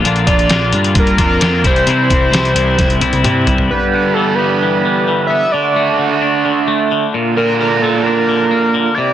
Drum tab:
HH |xxxxx-xxxxx-x-xx|x-x-xxx-xxxxx-x-|----------------|----------------|
SD |----o-------o---|----o---o-------|----------------|----------------|
T1 |----------------|----------oo----|----------------|----------------|
T2 |----------------|------------o---|----------------|----------------|
FT |----------------|--------------oo|----------------|----------------|
BD |--o-----o-o---o-|--o-----o-------|----------------|----------------|

HH |----------------|
SD |----------------|
T1 |----------------|
T2 |----------------|
FT |----------------|
BD |----------------|